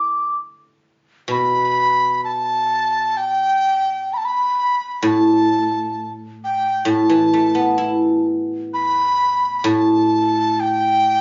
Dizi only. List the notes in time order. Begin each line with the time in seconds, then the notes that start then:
Already playing: D6
1.31 B5
2.24 A5
3.17 G5
4.13 A5 B5
4.25 B5
5.06 A5
6.44 G5
6.89 A5
8.73 B5
9.59 B5
9.66 A5
10.60 G5